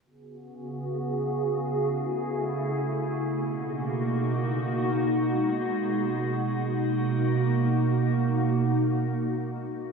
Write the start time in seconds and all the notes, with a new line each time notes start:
0.05 C#3 B3 F#4 G#4
1.70 A3 E4
3.36 B2 A#3 D#4 F#4
5.01 G#3
6.67 B2 A#3 D#4 F#4